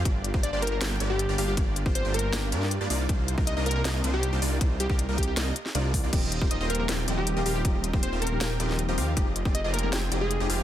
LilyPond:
<<
  \new Staff \with { instrumentName = "Digital synth lead" } { \time 4/4 \key c \minor \tempo 4 = 158 r4 d''16 d''16 bes'16 bes'16 r8. g'8. g'16 g'16 | r4 c''16 r16 bes'4. r4 | r4 ees''16 ees''16 bes'16 bes'16 r8. g'8. r8 | r8 g'16 g'16 r8 g'16 g'16 r2 |
r4 ees''16 ees''16 bes'16 bes'16 r8. g'8. g'16 g'16 | r4 c''16 r16 bes'4. r4 | r4 ees''16 ees''16 bes'16 bes'16 r8. aes'8. r8 | }
  \new Staff \with { instrumentName = "Supersaw synth" } { \time 4/4 \key c \minor <bes d' f' g' d''>8. <bes d' f' g' c''>8 <bes d' f' g' c''>8. <bes d' f' g' g''>8 <bes d' f' g' d''>8. <bes d' f' g' d''>16 <bes d' f' g' f''>8 | <bes d' f' d''>8. <bes d' f' g' c''>8 <bes d' f' g' c''>8. <bes d' f' g' g''>8 <bes d' f' g' d''>8. <bes d' f' g' d''>16 <bes d' ees' f' d''>8 | <bes d' ees' f' c''>8. <bes d' ees' f' bes'>8 <bes d' ees' f' bes'>8. <bes d' ees' f' ees''>8 <bes d' ees' f' c''>8. <bes d' ees' f' c''>16 <bes d' ees' f' d''>8 | ees'8. <bes d' ees' f' bes'>8 <bes d' ees' f' bes'>8. <bes d' ees' f' ees''>8 r8 <bes d' ees' f' d''>8. <bes d' ees' f' d''>16 |
<c' f' g' bes' ees''>8. <c' f' g' bes' c''>8 <c' f' g' bes' c''>8. <c' f' g' bes' g''>8 <c' f' g' bes' ees''>8. <c' f' g' bes' ees''>16 <c' f' g' bes' f''>8 | <c' f' g' bes' ees''>8. <c' f' g' bes' c''>8 <c' f' g' bes' c''>8. <c' f' g' bes' g''>8 <c' f' g' bes' ees''>8. <c' f' g' bes' ees''>16 <c' f' g' bes' f''>8 | <c' f' g' aes' ees''>8. <c' f' g' aes' d''>8 <c' f' g' aes' d''>8. <c' f' g' aes' g''>8 <c' f' g' aes' ees''>8. <c' f' g' aes' ees''>16 <c' f' g' aes' f''>8 | }
  \new Staff \with { instrumentName = "Tine electric piano" } { \time 4/4 \key c \minor r1 | r1 | r1 | r1 |
<f bes c' ees' g'>16 r8 <f bes c' ees' g'>16 r8. <f bes c' ees' g'>8 r16 <f bes c' ees' g'>8. <f bes c' ees' g'>8. | <f bes c' ees' g'>16 r8 <f bes c' ees' g'>16 r8. <f bes c' ees' g'>8 r16 <f bes c' ees' g'>8. <f bes c' ees' g'>8. | <f aes c' ees' g'>16 r8 <f aes c' ees' g'>16 r8. <f aes c' ees' g'>8 r16 <f aes c' ees' g'>8. <f aes c' ees' g'>8. | }
  \new Staff \with { instrumentName = "Detuned saw bass" } { \clef bass \time 4/4 \key c \minor g,,8. g,,8 g,,8. g,,8 g,,8. g,,16 g,,8 | g,,8. g,,8 g,,8. g,,8 g,8. g,16 c,8 | c,8. c,8 c,8. c,8 c,8. c,16 c,8 | c,8. c,8 c,8. c,8 r8 c,8. c,16 |
ees,,8. ees,,8 ees,,8. ees,,8 ees,,8. ees,,16 ees,,8 | ees,,8. ees,,8 ees,,8. ees,,8 ees,,8. ees,,16 ees,8 | f,,8. f,,8 f,,8. f,,8 f,,8. f,,16 f,,8 | }
  \new DrumStaff \with { instrumentName = "Drums" } \drummode { \time 4/4 <hh bd>8 hh16 bd16 hh8 hh32 hh16. <hh sn>8 hh8 hh8 hho8 | <hh bd>8 hh16 bd16 hh8 hh32 hh16. <hh sn>8 hh16 sn16 hh8 hho8 | <hh bd>8 hh16 bd16 hh8 hh32 hh16. <hh sn>8 hh8 hh8 hho8 | <hh bd>8 hh16 bd16 hh8 <hh bd>32 hh16. <hh sn>8 hh16 sn16 hh8 <hho bd>8 |
<cymc hh bd>8 hh16 bd16 hh8 hh32 hh16. <hh sn>8 hh8 hh8 hho8 | <hh bd>8 hh16 bd16 hh8 hh32 hh16. <hh sn>8 hh16 sn16 hh8 hho8 | <hh bd>8 hh16 bd16 hh8 hh32 hh16. <hh sn>8 hh8 hh8 hho8 | }
>>